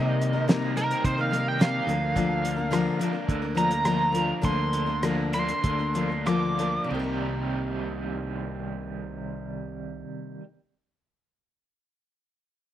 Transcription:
Already playing: C3 D#3 G3 A#3 C4 D#4 G4 A#4 D#5
0.21 D#3, closed hi-hat
0.33 A#3 D#4 A#4
0.48 C3 G3 A#3 D#4 A#4, snare, closed hi-hat
0.76 G3 A#3 C4 D#4 A#4, closed hi-hat
0.91 closed hi-hat
1.04 C3 D#3 C5, kick, closed hi-hat
1.18 A#3 D#4 A#4 F5
1.31 G3 A#3 D#4 A#4, closed hi-hat
1.48 G5
1.59 C3 G3 A#3 D#4 G4 A#4 F5, snare, closed hi-hat
1.87 D2 D3 F3 A#3 D4 A#4, closed hi-hat
2.16 D3 F3 A#3 D4 A#4, kick, closed hi-hat
2.44 D3, closed hi-hat
2.56 A#3 D4 A#4
2.71 D3 F3 A#3 D4 A#4, cross-stick, closed hi-hat
2.99 F3 A#3 D4 A#4, closed hi-hat
3.13 A#3 D4 A#4
3.28 D2 D3, kick, closed hi-hat
3.42 A#3 D4 A#4
3.55 F3 A#3 D4 A#4 A#5, closed hi-hat
3.71 A#3 D4 A#4, closed hi-hat
3.85 D3 F3 A#3 D4 F4 A#4, cross-stick, closed hi-hat
4.12 F3 A#3 D4 A#4, closed hi-hat
4.42 D2 D3 F3 A#3 D4 A#4 C6, kick, closed hi-hat
4.73 D3, closed hi-hat
4.86 A#3 D4 A#4
5.03 D3 F3 A#3 D4 A#4, cross-stick, closed hi-hat
5.32 F3 A#3 D4 A#4 C6, closed hi-hat
5.47 A#3 D4 A#4, closed hi-hat
5.63 D2 D3, kick, closed hi-hat
5.79 A#3 D4 A#4
5.94 F3 A#3 D4 A#4, closed hi-hat
6.09 A#3 D4 A#4
6.26 D3 F3 A#3 D4 F4 A#4 D6, cross-stick, closed hi-hat
6.58 F3 A#3 D4 A#4, closed hi-hat
6.84 C3
6.89 C2 C3 D#3 G3 C4 G4
6.95 A#3
6.99 D#4
7.04 A#4

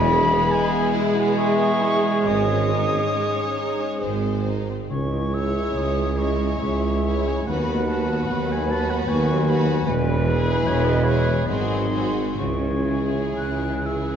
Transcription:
Already playing: E1 E2 B2 E3 G#3 B3 E4 G#4 B4 G#5 B5
0.11 E4 B5
0.24 B4
0.32 B3
0.51 G#3 G#4 G#5
0.72 B3
0.80 E5
0.93 E4
1.08 G#4
1.15 B3
1.35 G#3 B4 E5 C#6
1.57 B3
1.66 E4
1.80 E4
1.95 G#3
2.02 B3
2.24 G#1 G#2 G#3 C#4 D#4 C#5 D#5 D#6
2.49 C#4
2.55 G#3
2.70 D#4
2.85 D#4
2.93 C#4
3.15 G#3 C#5
3.36 C#4
3.44 G#4
3.56 D#4
3.73 C#5
3.80 C#4
4.02 G#1 G#2 G#3 C4 C5
4.25 C4
4.32 G#3
4.47 D#4
4.61 D#4 C5
4.69 C4
4.88 C#2 C#3 G#3 C#4 E4 G#4 C#5 C#6
5.19 G#3
5.32 G#3 E4 C#5 E6
5.46 E4
5.74 C#2 C#5 D#6
6.04 G#4
6.17 G#3 E4 C#5 D#5 C#6
6.33 C#5
6.59 C#2 E4 E5
6.90 G#3
7.04 G#3 E4 C#5
7.19 C#4
7.27 G#5
7.46 D#2 D#3 F#3 B3 F#4 B4 F#5 B5
7.75 F#3
7.88 B3 F#4 A5
7.93 B4
8.02 F#4
8.28 D#2 B4 B5
8.52 F#4 G#5
8.69 B3 F#4 B4 A5
8.90 F#5
9.07 D#2 F#4 G#5 C#6
9.33 F#3
9.47 B3 F#4 B4 B5
9.60 D#4
9.85 E1 E2 E3 G#3 B3 E4 B4 G#5
10.14 E4
10.26 B3 E4 G#4 B5
10.40 B4
10.66 E1 E2 G#4 C#5
10.85 D#5
10.94 E5
11.04 B3 E4 G#4 C#5
11.21 G#4
11.46 G#1 G#2 F#3 G#3 C4 D#4 F#4 G#4 D#5 C6
11.79 G#3
11.91 C4 F#4 G#4
12.09 F#4 C5
12.35 C#2 C#3 E3 G#3 C#4 G#4 C#5
12.39 C#2 C#3 E4 C#6
12.73 G#3
12.86 C#4 E4 G#4
13.04 E4
13.36 C#2 C#3 C#5 F#6
13.69 G#4
13.83 C#4 E4 G#4 E6
14.01 C#5

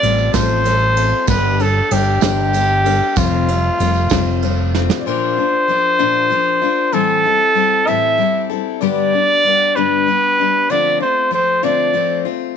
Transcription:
Already playing: D5
0.02 A1 G3 C4 F4 A4, ride
0.18 tambourine
0.33 A1 A2 F3 G3 C4 F4 A4 C5, kick, snare, ride, tambourine
0.64 G3 C4 F4 A4, ride, tambourine
0.96 G3 C4 F4 A4, ride
1.27 G1 G2 D3 G3 B3 D4 G4 B4, kick, ride, tambourine
1.59 G3 B3 D4 G4 A4, ride
1.91 G1 G3 B3 D4 G4, ride
2.21 G1 G2 D3 G3 B3 D4 G4, snare, ride, tambourine
2.53 G3 B3 D4 G4, ride, tambourine
2.84 G3 B3 D4 G4, ride
3.16 F1 F2 C3 G3 A3 C4 F4, kick, ride, tambourine
3.47 G3 A3 C4 F4, ride
3.78 F1 G3 A3 C4 F4, ride
3.95 tambourine
4.10 F1 F2 C3 G3 A3 C4 F4, kick, snare, ride, tambourine
4.26 tambourine
4.42 G3 A3 C4 F4, ride
4.74 G3 A3 C4 F4, snare
4.90 snare, tambourine
4.99 D5
5.06 A#2 F3 A#3 D4 F4 C5
5.37 A#3 D4 F4
5.68 F3 A#3 D4 F4
5.99 A#2 F3 A#3 D4 F4
6.30 F3 A#3 D4 F4
6.62 A#3 D4 F4
6.92 A2 E3 G3 C4 E4 A4
7.24 G3 C4 E4 A4
7.55 G3 C4 E4 A4
7.87 A2 E3 G3 C4 E4 A4 E5
8.18 G3 C4 E4 A4
8.50 G3 C4 E4 A4
8.81 G2 D3 G3 B3 D4 G4 D5
9.13 D4 G4
9.44 G3 B3 D4 G4
9.76 G2 D3 G3 B3 D4 G4 B4
10.07 G3 B3 D4 G4
10.38 G3 B3 D4 G4
10.70 D3 F3 A3 C4 F4 D5
11.00 A3 C4 F4 C5
11.31 F3 A3 C4 F4 C5
11.63 D3 F3 A3 C4 F4 D5
11.93 F3 A3 C4 F4
12.25 A3 C4 F4

